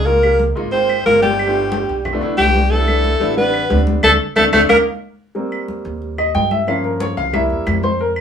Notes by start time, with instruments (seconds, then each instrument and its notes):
Already playing: upright bass C#2
0.06 upright piano G#3 A#3 D#4 F4, tenor saxophone A#3, alto saxophone A#4, high conga
0.22 upright piano G#3 A#3 D#4 G4, high conga, claves
0.40 high conga
0.55 upright bass G#1, upright piano G#3 A#3 D#4 F4, high conga
0.72 upright piano G#3 A#3 D#4 F4, tenor saxophone C4, alto saxophone C5, high conga
0.89 high conga, claves
1.05 upright bass G1, upright piano G#3 A#3 D#4 F4, tenor saxophone A#3, alto saxophone A#4, high conga
1.22 tenor saxophone G3, alto saxophone G4, high conga
1.39 high conga, claves
1.46 upright piano A3 B3 D4 F4
1.56 high conga
1.72 high conga
1.88 upright bass B1, high conga
2.05 high conga, low conga, claves
2.13 upright piano A3 B3 D4 F4
2.21 upright bass B1, upright piano A3 B3 D4 E4, high conga
2.37 upright bass C2, tenor saxophone G3, upright piano A3 B3 D4, alto saxophone G4, high conga, claves
2.54 high conga
2.70 upright piano G3 B3 D4 E4, tenor saxophone A3, alto saxophone A4, high conga
2.87 upright piano G3 B3 D4 E4, high conga, claves
3.04 high conga
3.20 upright bass A1, upright piano G3 B3 D4 E4, high conga
3.36 upright piano G3 B3 C4 D4, tenor saxophone B3, alto saxophone B4, high conga
3.54 high conga, claves
3.70 upright bass D2, upright piano G3 B3 C4 D4, high conga
3.87 high conga
4.03 upright bass D2, upright piano A3 C4 D4, tenor saxophone A3, alto saxophone A4, high conga, claves
4.36 upright bass D2, tenor saxophone A3, upright piano A3 C4 D4, alto saxophone A4, high conga, claves
4.53 upright bass D2, upright piano A3 C4 D4, tenor saxophone A3, alto saxophone A4, high conga, claves
4.69 upright bass D#2, upright piano A#3 C#4 D#4, tenor saxophone A#3, alto saxophone A#4, high conga, claves
5.35 upright piano G3 A#3 C4, high conga
5.52 high conga, claves
5.68 high conga
5.85 upright bass D#2, high conga
6.02 high conga
6.18 upright piano D#5, high conga, claves
6.35 upright bass G2, upright piano G5, high conga
6.51 upright piano E5, high conga
6.67 upright piano F3 A#3 C#4 F5, high conga, claves
6.84 upright piano A#4, high conga
7.00 upright piano C#5, high conga
7.17 upright bass C2, upright piano F5, high conga
7.33 upright piano G3 A#3 E4 E5, high conga, low conga, claves
7.50 upright bass E2, high conga
7.66 upright bass F2, high conga, claves
7.83 upright piano C5, high conga
8.00 upright piano A#4, high conga
8.16 high conga, claves